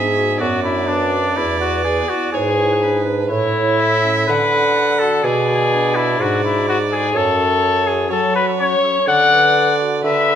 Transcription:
0.00 0.37 G#2 medium
0.00 0.39 G#2 medium
0.00 0.31 B3 soft
0.00 0.39 G#4 medium
0.00 0.37 E5 medium
0.17 0.55 F#4 medium
0.40 1.33 F#2 medium
0.40 1.35 F#2 medium
0.40 0.79 B3 medium
0.40 0.63 F#4 medium
0.40 2.36 D5 medium
0.63 1.03 D4 soft
0.63 0.89 E4 medium
0.87 1.38 D4 medium
0.87 1.27 B4 soft
1.13 1.37 F#4 soft
1.36 2.04 E2 medium
1.36 2.02 E2 medium
1.36 1.60 E4 medium
1.60 1.84 F#4 medium
1.60 2.00 B4 medium
1.84 2.10 G#4 medium
1.84 2.24 D5 medium
2.09 2.48 E4 soft
2.09 2.32 F#4 medium
2.33 3.26 G#2 medium
2.33 3.00 G#4 medium
2.33 2.72 B4 medium
2.33 2.84 C#5 medium
2.58 2.96 E4 soft
2.81 3.20 D4 soft
2.81 3.30 B4 medium
3.05 3.30 B4 medium
3.29 4.24 A2 medium
3.29 4.27 A2 medium
3.29 4.24 E4 loud
3.29 3.81 C#5 medium
3.55 3.94 E4 soft
3.79 4.18 A4 medium
3.79 4.31 E5 medium
4.03 4.28 C#4 soft
4.27 5.20 D3 medium
4.27 5.22 D3 medium
4.27 5.01 B4 loud
4.27 5.24 F#5 medium
4.53 4.91 A4 medium
4.76 5.15 D5 medium
4.99 5.38 F#4 medium
4.99 5.25 A4 medium
5.24 6.18 B2 medium
5.24 6.16 B2 medium
5.24 5.97 G#4 loud
5.24 5.62 A4 medium
5.24 7.12 D5 medium
5.48 5.86 F#4 soft
5.72 6.10 D4 soft
5.96 6.23 E4 medium
5.96 6.34 A4 medium
6.19 7.13 G#2 medium
6.19 7.11 G#2 medium
6.19 6.58 D4 medium
6.19 6.44 F#4 loud
6.43 6.67 E4 medium
6.43 6.82 F#4 soft
6.66 6.79 F#4 medium
6.66 7.05 D5 medium
6.91 7.18 G#4 medium
6.91 7.15 A4 soft
7.14 8.08 F#2 medium
7.14 8.06 F#2 medium
7.14 7.89 A4 loud
7.14 8.08 C#5 medium
7.38 7.76 A4 medium
7.62 8.00 C#5 medium
7.85 8.24 F#4 medium
7.85 8.11 G#4 medium
8.09 8.75 F#3 medium
8.09 8.78 F#3 medium
8.09 8.49 A4 medium
8.09 8.34 A4 loud
8.09 9.06 C#5 medium
8.34 8.73 F#4 medium
8.34 8.46 B4 loud
8.59 8.98 C#4 medium
8.59 9.08 C#5 loud
8.84 9.08 A4 medium
9.07 10.00 D3 medium
9.07 10.02 D5 medium
9.07 9.75 F#5 loud
9.31 9.70 B4 medium
9.56 9.94 D5 medium
9.80 10.04 F#4 soft
10.04 10.35 D3 medium
10.04 10.35 B4 medium
10.04 10.35 E5 loud
10.27 10.35 G#4 medium

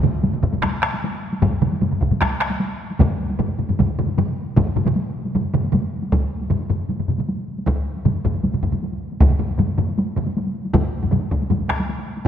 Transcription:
0.03 taiko low-mid loud
0.03 taiko mid loud
0.03 taiko high soft
0.23 taiko low-mid medium
0.23 taiko mid medium
0.23 taiko high medium
0.33 taiko low-mid medium
0.33 taiko mid medium
0.43 taiko medium
0.43 taiko low-mid medium
0.43 taiko mid medium
0.53 taiko low-mid medium
0.53 taiko mid medium
0.53 taiko high soft
0.62 taiko rim medium
0.62 taiko medium
0.62 taiko high medium
0.82 taiko rim medium
0.93 taiko high medium
1.04 taiko high medium
1.33 taiko high medium
1.42 taiko medium
1.42 taiko low-mid medium
1.42 taiko mid loud
1.42 taiko high medium
1.62 taiko low-mid loud
1.62 taiko mid loud
1.62 taiko high medium
1.72 taiko high soft
1.81 taiko low-mid medium
1.81 taiko mid medium
1.81 taiko high medium
1.91 taiko low-mid medium
1.91 taiko mid medium
2.01 taiko medium
2.01 taiko low-mid medium
2.01 taiko mid medium
2.11 taiko low-mid medium
2.11 taiko mid medium
2.11 taiko high medium
2.21 taiko rim medium
2.21 taiko medium
2.21 taiko high medium
2.40 taiko rim medium
2.50 taiko high medium
2.60 taiko high medium
2.91 taiko high soft
2.99 taiko medium
2.99 taiko low-mid medium
2.99 taiko mid loud
2.99 taiko high medium
3.20 taiko high soft
3.30 taiko high medium
3.39 taiko low-mid loud
3.39 taiko mid loud
3.39 taiko high medium
3.59 taiko low-mid medium
3.59 taiko mid medium
3.69 taiko low-mid medium
3.69 taiko mid medium
3.69 taiko high soft
3.79 taiko medium
3.79 taiko low-mid medium
3.79 taiko mid loud
3.79 taiko high medium
3.99 taiko low-mid loud
3.99 taiko mid loud
4.08 taiko high medium
4.17 taiko low-mid loud
4.17 taiko mid loud
4.17 taiko high medium
4.57 taiko medium
4.57 taiko low-mid loud
4.57 taiko mid medium
4.57 taiko high medium
4.76 taiko low-mid loud
4.76 taiko mid medium
4.76 taiko high soft
4.86 taiko low-mid medium
4.86 taiko mid loud
4.86 taiko high medium
4.96 taiko high medium
5.25 taiko high soft
5.35 taiko low-mid medium
5.35 taiko mid medium
5.35 taiko high medium
5.54 taiko low-mid loud
5.54 taiko mid loud
5.64 taiko high medium
5.73 taiko low-mid medium
5.73 taiko mid loud
5.73 taiko high medium
6.02 taiko high medium
6.12 taiko medium
6.12 taiko high medium
6.41 taiko high soft
6.50 taiko low-mid medium
6.50 taiko mid medium
6.50 taiko high medium
6.70 taiko low-mid medium
6.70 taiko mid medium
6.89 taiko low-mid medium
6.89 taiko mid medium
6.89 taiko high medium
7.00 taiko low-mid medium
7.00 taiko mid medium
7.08 taiko low-mid medium
7.08 taiko mid medium
7.18 taiko low-mid medium
7.18 taiko mid medium
7.18 taiko high soft
7.29 taiko high medium
7.38 taiko high soft
7.58 taiko high soft
7.67 taiko medium
7.67 taiko high soft
7.97 taiko high soft
8.05 taiko low-mid loud
8.05 taiko mid medium
8.05 taiko high medium
8.25 taiko medium
8.25 taiko low-mid medium
8.25 taiko mid medium
8.35 taiko high soft
8.44 taiko low-mid medium
8.44 taiko mid medium
8.44 taiko high medium
8.54 taiko low-mid medium
8.54 taiko mid medium
8.63 taiko medium
8.63 taiko low-mid medium
8.63 taiko mid medium
8.72 taiko low-mid medium
8.72 taiko mid medium
8.72 taiko high soft
8.83 taiko high medium
8.92 taiko high soft
9.12 taiko high soft
9.21 taiko loud
9.21 taiko low-mid medium
9.21 taiko mid medium
9.21 taiko high medium
9.30 taiko low-mid medium
9.30 taiko mid medium
9.40 taiko low-mid medium
9.40 taiko mid medium
9.50 taiko high medium
9.59 taiko low-mid medium
9.59 taiko mid medium
9.59 taiko high medium
9.78 taiko low-mid medium
9.78 taiko mid medium
9.88 taiko high soft
9.98 taiko high medium
10.16 taiko low-mid medium
10.16 taiko mid medium
10.26 taiko high medium
10.37 taiko high medium
10.47 taiko high medium
10.65 taiko high medium
10.74 taiko loud
10.74 taiko low-mid medium
10.74 taiko mid medium
10.74 taiko high medium
11.03 taiko low-mid medium
11.03 taiko mid medium
11.03 taiko high medium
11.12 taiko low-mid loud
11.12 taiko mid medium
11.12 taiko high medium
11.31 taiko medium
11.42 taiko high soft
11.50 taiko low-mid medium
11.50 taiko mid medium
11.50 taiko high medium
11.69 taiko rim medium
11.69 taiko medium
11.80 taiko high medium
11.89 taiko high medium
11.98 taiko high soft
12.17 taiko high soft

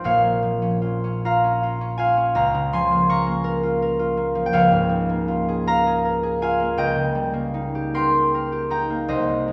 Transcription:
0.00 2.39 A#1 medium
0.00 0.41 F3 medium
0.00 0.80 F4 medium
0.00 0.10 D#5 medium
0.05 2.39 A#2 medium
0.05 3.96 C#5 medium
0.05 1.25 F5 loud
0.24 2.90 A#3 medium
0.43 2.72 F3 medium
0.62 1.03 C#4 medium
0.82 1.24 F4 medium
1.04 1.43 C#4 medium
1.25 1.62 F4 medium
1.25 1.98 F5 medium
1.25 2.34 A#5 loud
1.44 1.80 C#4 medium
1.63 1.97 F4 medium
1.81 2.16 C#4 medium
1.98 3.08 F4 medium
1.98 2.35 F5 medium
1.98 2.61 G#5 loud
2.17 6.07 C#4 medium
2.35 4.52 C#2 medium
2.35 4.52 F5 medium
2.35 3.09 A#5 loud
2.54 4.55 C#3 medium
2.73 4.34 F3 medium
2.73 6.41 G#5 medium
2.73 3.35 C6 loud
2.91 3.25 A#3 medium
3.09 3.62 F4 medium
3.09 5.66 A#5 medium
3.09 7.00 C#6 loud
3.26 4.16 A#3 medium
3.44 3.81 A#4 medium
3.63 3.98 F4 medium
3.82 5.66 A#4 medium
3.99 5.27 F4 medium
4.17 5.08 A#3 medium
4.35 6.81 F3 medium
4.46 4.57 G5 medium
4.53 6.76 C#2 medium
4.53 8.44 C#5 medium
4.53 5.67 F5 loud
4.71 6.81 G#2 medium
4.89 6.81 G#3 medium
5.09 6.58 A#3 medium
5.28 6.41 F4 medium
5.49 5.86 G#4 medium
5.67 6.04 A#4 medium
5.67 6.42 F5 loud
5.67 8.69 A#5 loud
5.87 6.22 G#4 medium
6.05 7.93 A#4 medium
6.23 6.81 G#4 medium
6.42 6.81 F4 medium
6.42 6.82 F5 medium
6.42 6.81 G#5 loud
6.60 7.32 A#3 medium
6.77 9.13 C#2 medium
6.77 9.07 D#5 medium
6.77 7.95 G5 loud
6.95 9.13 C#3 medium
7.15 9.14 G3 medium
7.33 8.89 A#3 medium
7.54 8.69 D#4 medium
7.75 8.13 G4 medium
7.94 8.33 A#4 medium
7.94 8.70 G5 medium
7.94 9.25 C6 loud
8.14 8.51 G4 medium
8.34 9.13 A#4 medium
8.52 9.13 G4 medium
8.70 9.53 D#4 medium
8.70 9.13 G5 medium
8.70 9.13 A#5 loud
8.90 9.13 A#3 medium
9.08 9.53 C2 medium
9.08 9.53 C5 medium
9.08 9.53 D#5 loud
9.29 9.53 C3 medium
9.48 9.53 G#3 medium

